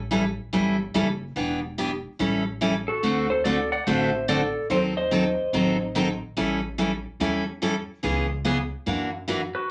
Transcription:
0.00 0.37 A1 medium
0.11 0.23 E3 medium
0.11 0.23 G3 medium
0.11 0.23 C#4 medium
0.11 0.23 E4 medium
0.11 0.23 A4 medium
0.53 0.89 G1 medium
0.53 0.75 E3 medium
0.53 0.75 G3 medium
0.53 0.76 C#4 medium
0.53 0.76 E4 medium
0.53 0.76 A4 medium
0.94 1.30 F#1 medium
0.94 1.06 E3 medium
0.94 1.06 G3 medium
0.94 1.07 C#4 medium
0.94 1.07 E4 medium
0.94 1.07 A4 medium
1.36 2.03 E1 medium
1.36 1.58 E3 medium
1.36 1.59 B3 medium
1.36 1.59 D4 medium
1.36 1.59 G4 medium
1.78 1.90 E3 medium
1.78 1.90 B3 medium
1.78 1.90 D4 medium
1.78 1.90 G4 medium
2.19 2.87 A1 medium
2.19 2.42 E3 medium
2.19 2.42 G3 medium
2.19 2.42 C#4 medium
2.19 2.42 E4 medium
2.19 2.42 A4 medium
2.61 2.73 E3 medium
2.61 2.73 G3 medium
2.61 2.73 C#4 medium
2.61 2.74 E4 medium
2.61 2.74 A4 medium
2.88 3.28 F#4 medium
2.88 3.27 A4 medium
3.03 3.70 D2 medium
3.03 3.25 D3 medium
3.03 3.26 A3 medium
3.03 3.26 C4 medium
3.03 3.26 F#4 medium
3.03 3.26 A4 medium
3.30 3.44 A4 medium
3.30 3.44 C5 medium
3.44 3.57 D3 medium
3.44 3.57 A3 medium
3.44 3.57 C4 medium
3.44 3.57 F#4 medium
3.44 3.70 A4 medium
3.44 3.57 A4 medium
3.44 3.71 D5 loud
3.72 3.86 D5 medium
3.72 3.87 F#5 medium
3.86 4.54 A1 medium
3.86 4.09 D3 medium
3.86 4.09 A3 medium
3.86 4.09 C4 medium
3.86 4.09 F#4 medium
3.86 4.09 A4 medium
3.86 4.26 C5 medium
3.86 4.29 E5 loud
4.28 4.40 D3 medium
4.28 4.40 A3 medium
4.28 4.40 C4 medium
4.28 4.40 F#4 medium
4.28 4.41 A4 medium
4.28 4.68 A4 medium
4.28 4.71 D5 medium
4.70 5.37 D#2 medium
4.70 4.92 D#3 medium
4.70 4.92 F#3 medium
4.70 4.92 C4 medium
4.70 4.93 D#4 medium
4.70 4.93 A4 medium
4.70 4.78 A4 medium
4.70 4.78 C5 medium
4.97 6.18 C5 medium
4.97 6.18 D#5 medium
5.11 5.23 D#3 medium
5.11 5.23 F#3 medium
5.11 5.24 C4 medium
5.11 5.24 D#4 medium
5.11 5.24 A4 medium
5.53 6.20 A1 medium
5.53 5.76 D#3 medium
5.53 5.76 F#3 medium
5.53 5.76 C4 medium
5.53 5.76 D#4 medium
5.53 5.76 A4 medium
5.95 6.07 D#3 medium
5.95 6.07 F#3 medium
5.95 6.07 C4 medium
5.95 6.07 D#4 medium
5.95 6.07 A4 medium
6.37 7.04 A1 medium
6.37 6.59 E3 medium
6.37 6.59 G3 medium
6.37 6.59 C#4 medium
6.37 6.59 E4 medium
6.37 6.59 A4 medium
6.78 6.90 E3 medium
6.78 6.90 G3 medium
6.78 6.90 C#4 medium
6.78 6.91 E4 medium
6.78 6.91 A4 medium
7.20 7.87 E2 medium
7.20 7.42 E3 medium
7.20 7.43 G3 medium
7.20 7.43 C#4 medium
7.20 7.43 E4 medium
7.20 7.43 A4 medium
7.62 7.74 E3 medium
7.62 7.74 G3 medium
7.62 7.74 C#4 medium
7.62 7.74 E4 medium
7.62 7.74 A4 medium
8.03 8.70 C#2 medium
8.03 8.25 C#3 soft
8.03 8.26 E3 medium
8.03 8.26 B3 medium
8.03 8.26 C#4 medium
8.03 8.26 G#4 medium
8.45 8.57 C#3 medium
8.45 8.57 E3 medium
8.45 8.57 B3 medium
8.45 8.57 C#4 medium
8.45 8.57 G#4 medium
8.86 9.53 F#2 medium
8.86 9.09 E3 medium
8.86 9.09 A#3 medium
8.86 9.09 D4 medium
8.86 9.09 F#4 medium
9.28 9.40 E3 medium
9.28 9.40 A#3 medium
9.28 9.40 D4 medium
9.28 9.40 F#4 medium
9.55 9.71 F#4 medium
9.55 9.71 B4 medium

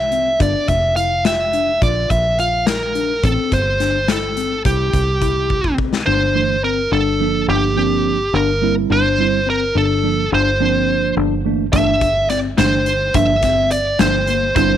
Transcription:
0.00 0.36 C2 medium
0.00 0.41 E5 medium
0.12 0.28 C4 medium
0.12 closed hi-hat medium
0.40 0.54 G1 medium
0.40 0.73 D4 medium
0.40 0.69 D5 medium
0.40 kick medium
0.40 closed hi-hat medium
0.68 1.78 F1 medium
0.68 0.96 E5 medium
0.68 kick medium
0.68 closed hi-hat medium
0.96 1.13 E4 medium
0.96 1.25 F5 medium
0.96 closed hi-hat medium
1.25 1.42 F4 medium
1.25 1.83 E5 medium
1.25 snare loud
1.25 closed hi-hat medium
1.53 1.70 D4 medium
1.53 closed hi-hat medium
1.82 2.09 A#1 medium
1.82 2.15 F4 medium
1.82 2.11 D5 medium
1.82 kick loud
1.82 closed hi-hat medium
2.10 3.20 A#1 medium
2.10 2.39 E5 medium
2.10 kick medium
2.10 closed hi-hat medium
2.39 2.72 F4 medium
2.39 2.68 F5 medium
2.39 closed hi-hat medium
2.66 3.25 A#4 medium
2.66 snare loud
2.66 closed hi-hat medium
2.95 3.12 D4 medium
2.95 closed hi-hat medium
3.23 3.37 A1 medium
3.23 3.57 C4 medium
3.23 3.53 A4 medium
3.23 kick loud
3.23 closed hi-hat medium
3.52 4.61 G1 medium
3.52 4.11 C5 medium
3.52 kick medium
3.52 closed hi-hat medium
3.80 3.97 D4 medium
3.80 snare soft
3.80 closed hi-hat medium
4.08 4.25 E4 medium
4.08 4.61 A4 medium
4.08 snare loud
4.08 closed hi-hat medium
4.37 4.54 C4 medium
4.37 closed hi-hat medium
4.65 4.92 C2 medium
4.65 4.99 E4 medium
4.65 5.75 G4 medium
4.65 kick medium
4.65 closed hi-hat medium
4.93 6.03 C2 medium
4.93 kick medium
4.93 closed hi-hat medium
5.22 5.55 E4 medium
5.22 kick medium
5.22 closed hi-hat medium
5.50 kick medium
5.64 kick medium
5.78 5.95 C4 medium
5.78 kick medium
5.93 snare medium
6.06 6.88 G1 medium
6.06 6.40 D4 medium
6.06 6.64 C5 medium
6.35 6.55 E3 medium
6.35 6.55 A3 medium
6.35 6.56 D4 medium
6.64 6.80 C4 medium
6.64 6.92 A#4 medium
6.92 7.45 G1 medium
6.92 7.25 D4 medium
6.92 7.45 A4 medium
7.20 7.75 F3 medium
7.20 7.76 A#3 medium
7.20 7.77 D4 medium
7.48 8.29 G1 medium
7.48 7.65 D4 medium
7.48 8.37 G4 medium
7.76 8.16 F3 medium
7.76 8.17 A#3 medium
7.76 8.10 C4 medium
7.76 8.17 D4 medium
8.33 8.87 G1 medium
8.33 8.50 D4 medium
8.33 8.74 A#4 medium
8.62 9.01 G3 medium
8.62 8.78 A#3 medium
8.62 9.02 C4 soft
8.62 9.02 E4 medium
8.90 9.71 G1 medium
8.90 9.23 D4 medium
8.90 9.49 C5 medium
9.18 9.38 G3 medium
9.18 9.39 C4 soft
9.18 9.39 E4 medium
9.47 9.63 C4 medium
9.47 9.77 A#4 medium
9.75 10.28 G1 medium
9.75 10.08 D4 medium
9.75 10.29 A4 medium
10.03 10.23 F3 medium
10.03 10.24 A#3 medium
10.03 10.24 D4 medium
10.32 11.13 G1 medium
10.32 10.49 D4 medium
10.32 11.14 C5 medium
10.60 11.39 F3 medium
10.60 11.40 A#3 medium
10.60 10.93 C4 medium
10.60 11.40 D4 medium
11.17 11.70 G1 medium
11.17 11.33 D4 medium
11.45 11.65 E3 medium
11.45 11.65 A3 medium
11.45 11.62 A#3 medium
11.45 11.65 D4 medium
11.73 12.54 G1 medium
11.73 11.93 E3 medium
11.73 11.93 A3 medium
11.73 12.06 D4 medium
11.73 11.94 D4 medium
11.73 12.29 E5 medium
11.73 kick loud
11.73 closed hi-hat medium
12.01 kick medium
12.01 closed hi-hat medium
12.30 12.46 C4 medium
12.30 12.38 D5 medium
12.30 snare soft
12.30 closed hi-hat medium
12.58 13.12 G1 medium
12.58 12.78 E3 medium
12.58 12.78 A3 soft
12.58 12.91 D4 medium
12.58 12.79 D4 medium
12.58 13.16 C5 medium
12.58 snare loud
12.58 closed hi-hat medium
12.86 closed hi-hat medium
13.14 13.95 G1 medium
13.14 13.34 F3 medium
13.14 13.35 A#3 medium
13.14 13.31 D4 medium
13.14 13.35 D4 medium
13.14 13.71 E5 medium
13.14 kick loud
13.14 closed hi-hat medium
13.43 13.76 C4 medium
13.43 kick medium
13.43 snare soft
13.43 closed hi-hat medium
13.71 14.01 D5 medium
13.71 closed hi-hat medium
13.99 14.53 G1 medium
13.99 14.19 F3 medium
13.99 14.20 A#3 medium
13.99 14.16 D4 medium
13.99 14.20 D4 medium
13.99 14.55 C5 medium
13.99 snare loud
13.99 closed hi-hat medium
14.27 14.45 A#3 medium
14.27 closed hi-hat medium
14.55 14.77 G1 medium
14.55 14.77 G3 medium
14.55 14.77 C4 medium
14.55 14.77 D4 medium
14.55 14.77 E4 medium
14.55 14.77 C5 medium
14.55 kick loud
14.55 closed hi-hat medium

